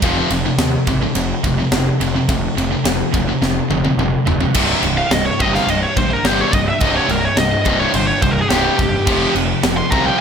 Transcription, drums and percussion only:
0.02 kick, ride
0.30 ride
0.59 snare, ride
0.87 kick, ride
1.15 ride
1.44 kick, ride
1.72 snare, ride
2.01 ride
2.29 kick, ride
2.58 ride
2.85 snare, ride
3.14 kick, ride
3.42 snare
3.71 high tom
3.85 high tom
3.99 mid tom
4.27 floor tom
4.41 floor tom
4.54 kick, crash
4.83 crash
5.11 snare, crash
5.40 kick, crash
5.55 snare
5.68 crash
5.97 kick, crash
6.25 snare, crash
6.53 kick, crash
6.80 kick, crash
7.09 crash
7.37 snare, crash
7.65 kick, crash
7.94 crash
8.22 kick, crash
8.51 snare, crash
8.79 kick, crash
9.07 kick, crash
9.36 crash
9.63 snare, crash
9.92 kick, crash

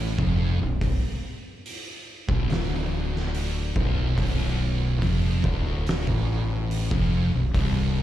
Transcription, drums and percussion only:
0.18 kick
0.81 kick, open hi-hat
1.66 open hi-hat
2.29 kick
2.50 snare, open hi-hat
3.16 snare
3.35 open hi-hat
3.76 kick
4.18 kick, open hi-hat
5.02 kick, open hi-hat
5.44 kick
5.87 snare, open hi-hat
6.07 kick
6.71 open hi-hat
6.91 kick
7.54 kick, open hi-hat

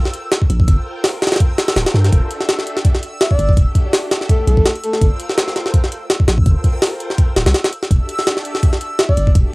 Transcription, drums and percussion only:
0.05 snare
0.14 closed hi-hat
0.32 snare, closed hi-hat
0.42 kick
0.50 closed hi-hat
0.60 kick
0.68 kick, closed hi-hat
1.04 snare, open hi-hat
1.22 snare, closed hi-hat
1.27 snare, closed hi-hat
1.32 snare, closed hi-hat
1.36 snare, closed hi-hat
1.40 kick, closed hi-hat
1.58 snare, closed hi-hat
1.68 snare, closed hi-hat
1.76 snare, closed hi-hat
1.86 snare, closed hi-hat
1.95 snare
2.04 snare, closed hi-hat
2.12 kick, closed hi-hat
2.31 closed hi-hat
2.41 snare
2.49 snare, closed hi-hat
2.59 snare
2.67 closed hi-hat
2.77 snare
2.85 kick, closed hi-hat
2.95 snare
3.03 closed hi-hat
3.21 snare, closed hi-hat
3.31 kick
3.39 closed hi-hat
3.49 kick
3.57 kick, closed hi-hat
3.75 kick, closed hi-hat
3.93 snare, open hi-hat
4.11 snare, closed hi-hat
4.21 snare
4.29 kick, closed hi-hat
4.47 closed hi-hat
4.57 kick
4.66 snare, closed hi-hat
4.75 closed hi-hat
4.84 closed hi-hat
4.93 snare
5.01 kick, closed hi-hat
5.20 closed hi-hat
5.30 snare
5.38 snare, closed hi-hat
5.48 snare
5.56 snare, closed hi-hat
5.66 snare
5.74 kick, closed hi-hat
5.84 snare
5.92 closed hi-hat
6.10 snare, closed hi-hat
6.20 kick
6.28 snare, closed hi-hat
6.38 kick
6.46 kick, closed hi-hat
6.64 kick, closed hi-hat
6.82 snare, open hi-hat
7.00 closed hi-hat
7.10 snare
7.18 kick, closed hi-hat
7.36 snare, closed hi-hat
7.46 snare, closed hi-hat
7.54 snare, closed hi-hat
7.64 snare, closed hi-hat
7.73 closed hi-hat
7.83 snare
7.91 kick, closed hi-hat
8.09 closed hi-hat
8.19 snare
8.27 snare, closed hi-hat
8.37 snare
8.45 closed hi-hat
8.55 snare
8.63 kick, closed hi-hat
8.73 snare
8.81 closed hi-hat
8.99 snare, closed hi-hat
9.09 kick
9.17 closed hi-hat
9.27 kick
9.35 kick, closed hi-hat

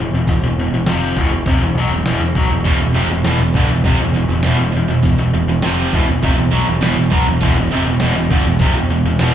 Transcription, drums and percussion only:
0.27 kick, open hi-hat
0.87 snare, open hi-hat
1.17 kick
1.46 kick, open hi-hat
2.06 snare, open hi-hat
2.35 kick
2.65 kick, open hi-hat
3.25 snare, open hi-hat
3.54 kick
3.84 kick, open hi-hat
4.43 snare, open hi-hat
5.03 kick, open hi-hat
5.62 snare, open hi-hat
5.93 kick
6.23 kick, open hi-hat
6.83 snare, open hi-hat
7.12 kick
7.41 kick, open hi-hat
8.00 snare, open hi-hat
8.30 kick
8.59 kick, open hi-hat
9.19 snare, open hi-hat

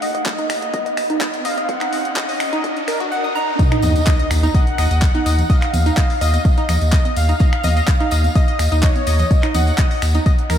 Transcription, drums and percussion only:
0.02 open hi-hat
0.15 closed hi-hat
0.26 kick, clap, closed hi-hat
0.38 closed hi-hat
0.50 finger snap, open hi-hat
0.62 closed hi-hat
0.74 kick, closed hi-hat
0.86 closed hi-hat
0.97 finger snap, open hi-hat
1.10 closed hi-hat
1.21 kick, clap, closed hi-hat
1.34 closed hi-hat
1.45 open hi-hat
1.57 closed hi-hat
1.69 kick, closed hi-hat
1.81 finger snap, clap, closed hi-hat
1.93 open hi-hat
2.05 closed hi-hat
2.16 kick, clap, closed hi-hat
2.29 open hi-hat
2.40 finger snap, open hi-hat
2.53 closed hi-hat
2.64 kick, closed hi-hat
2.77 closed hi-hat
2.88 finger snap, open hi-hat
3.00 kick, closed hi-hat
3.59 kick, closed hi-hat, tambourine
3.72 finger snap, closed hi-hat
3.82 open hi-hat, tambourine, high conga, low conga
3.96 closed hi-hat, tambourine
4.07 kick, clap, closed hi-hat
4.19 closed hi-hat
4.31 finger snap, open hi-hat, tambourine
4.43 closed hi-hat, tambourine, high conga
4.54 kick, closed hi-hat, tambourine
4.67 closed hi-hat
4.78 finger snap, open hi-hat, tambourine
4.91 closed hi-hat, tambourine
5.02 kick, clap, closed hi-hat, tambourine
5.15 closed hi-hat, high conga
5.26 open hi-hat, tambourine
5.38 closed hi-hat, tambourine, low conga
5.50 kick, closed hi-hat
5.62 finger snap, clap, closed hi-hat
5.74 open hi-hat, tambourine, high conga, low conga
5.86 closed hi-hat, tambourine
5.97 kick, clap, closed hi-hat
6.10 open hi-hat
6.21 open hi-hat, tambourine
6.33 closed hi-hat, tambourine, high conga
6.45 kick, closed hi-hat, tambourine
6.58 closed hi-hat
6.69 finger snap, open hi-hat, tambourine, low conga
6.81 closed hi-hat, tambourine
6.92 kick, clap, closed hi-hat, tambourine
7.05 closed hi-hat, high conga
7.16 open hi-hat, tambourine
7.29 closed hi-hat, tambourine
7.39 kick, closed hi-hat, tambourine
7.53 finger snap, closed hi-hat
7.64 open hi-hat, tambourine, high conga, low conga
7.77 closed hi-hat, tambourine
7.88 kick, clap, closed hi-hat
8.00 closed hi-hat
8.11 open hi-hat, tambourine
8.24 closed hi-hat, tambourine, high conga
8.36 kick, closed hi-hat, tambourine
8.48 closed hi-hat
8.59 finger snap, open hi-hat, tambourine
8.72 closed hi-hat, tambourine
8.83 kick, clap, closed hi-hat
8.96 closed hi-hat, high conga
9.07 open hi-hat, tambourine
9.19 closed hi-hat, tambourine, low conga
9.31 kick, closed hi-hat, tambourine
9.43 finger snap, clap, closed hi-hat
9.54 open hi-hat, tambourine, high conga, low conga
9.67 closed hi-hat, tambourine
9.78 kick, clap, closed hi-hat
9.91 open hi-hat
10.02 finger snap, open hi-hat, tambourine
10.14 closed hi-hat, tambourine, high conga
10.26 kick, closed hi-hat, tambourine
10.39 closed hi-hat
10.50 finger snap, open hi-hat, tambourine, low conga

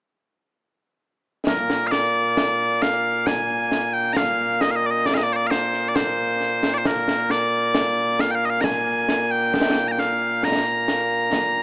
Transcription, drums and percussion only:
1.47 concert bass drum, snare
1.70 snare
1.92 snare
2.37 concert bass drum, snare
2.82 snare
3.27 concert bass drum, snare
3.72 snare
4.16 concert bass drum, snare
4.61 snare
5.06 concert bass drum, snare
5.51 snare
5.73 snare
5.96 concert bass drum, snare
6.40 snare
6.63 snare
6.85 concert bass drum, snare
7.08 snare
7.30 snare
7.75 concert bass drum, snare
8.19 snare
8.64 concert bass drum, snare
9.09 snare
9.54 concert bass drum, snare
9.98 snare
10.43 concert bass drum, snare
10.88 snare
11.33 concert bass drum, snare

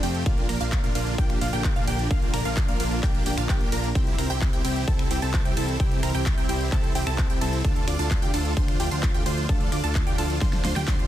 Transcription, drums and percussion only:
0.03 open hi-hat, ride
0.15 closed hi-hat
0.26 kick, closed hi-hat
0.38 closed hi-hat
0.49 finger snap, open hi-hat, ride
0.61 closed hi-hat
0.72 kick, clap, closed hi-hat
0.84 closed hi-hat
0.95 open hi-hat, ride
1.07 closed hi-hat
1.18 kick, closed hi-hat
1.30 finger snap, closed hi-hat
1.41 open hi-hat, ride
1.53 closed hi-hat
1.64 kick, clap, closed hi-hat
1.76 closed hi-hat
1.87 open hi-hat, ride
1.99 closed hi-hat
2.11 kick, closed hi-hat
2.22 closed hi-hat
2.34 finger snap, open hi-hat, ride
2.45 closed hi-hat
2.57 kick, clap, closed hi-hat
2.68 closed hi-hat
2.80 open hi-hat, ride
2.92 closed hi-hat
3.03 kick, clap, closed hi-hat
3.15 closed hi-hat
3.26 open hi-hat, ride
3.38 finger snap
3.49 kick, clap, closed hi-hat
3.61 closed hi-hat
3.72 open hi-hat, ride
3.84 closed hi-hat
3.95 kick, closed hi-hat
4.07 closed hi-hat
4.18 finger snap, open hi-hat, ride
4.30 closed hi-hat
4.41 kick, clap, closed hi-hat
4.53 closed hi-hat
4.65 open hi-hat, ride
4.76 closed hi-hat
4.88 kick, closed hi-hat
4.99 finger snap, closed hi-hat
5.11 open hi-hat, ride
5.22 closed hi-hat
5.34 kick, clap, closed hi-hat
5.45 closed hi-hat
5.57 open hi-hat, ride
5.68 closed hi-hat
5.80 kick, closed hi-hat
5.91 closed hi-hat
6.03 finger snap, open hi-hat, ride
6.15 closed hi-hat
6.26 kick, clap, closed hi-hat
6.38 closed hi-hat
6.49 open hi-hat, ride
6.61 closed hi-hat
6.72 kick, clap, closed hi-hat
6.84 closed hi-hat
6.95 open hi-hat, ride
7.07 finger snap
7.18 kick, clap, closed hi-hat
7.30 closed hi-hat
7.41 open hi-hat, ride
7.53 closed hi-hat
7.65 kick, closed hi-hat
7.76 closed hi-hat
7.88 finger snap, open hi-hat, ride
7.99 closed hi-hat
8.11 kick, clap, closed hi-hat
8.22 closed hi-hat
8.34 open hi-hat, ride
8.45 closed hi-hat
8.57 kick, closed hi-hat
8.68 finger snap, closed hi-hat
8.80 open hi-hat, ride
8.91 closed hi-hat
9.03 kick, clap, closed hi-hat
9.15 closed hi-hat
9.26 open hi-hat, ride
9.38 closed hi-hat
9.49 kick, closed hi-hat
9.61 closed hi-hat
9.72 finger snap, open hi-hat, ride
9.84 closed hi-hat
9.95 kick, clap, closed hi-hat
10.07 closed hi-hat
10.18 open hi-hat, ride
10.30 closed hi-hat
10.41 kick, snare, closed hi-hat
10.53 snare, closed hi-hat
10.65 snare, open hi-hat, ride
10.76 snare
10.88 kick, snare, clap, closed hi-hat
10.99 closed hi-hat

